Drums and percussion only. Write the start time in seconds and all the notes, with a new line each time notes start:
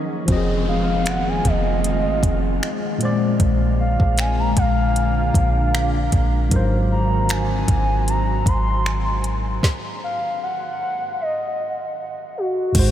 0.28 kick, closed hi-hat
1.06 finger snap, closed hi-hat
1.45 kick, closed hi-hat
1.84 closed hi-hat
2.23 kick, closed hi-hat
2.63 finger snap
3.01 closed hi-hat
3.40 kick, closed hi-hat
4.00 kick
4.18 finger snap, closed hi-hat
4.57 kick, closed hi-hat
4.96 closed hi-hat
5.34 kick, closed hi-hat
5.75 finger snap
6.12 kick, closed hi-hat
6.51 kick, closed hi-hat
7.29 finger snap, closed hi-hat
7.68 kick, closed hi-hat
8.08 closed hi-hat
8.46 kick, closed hi-hat
8.86 finger snap
9.24 closed hi-hat
9.63 kick, snare
12.75 kick, closed hi-hat, crash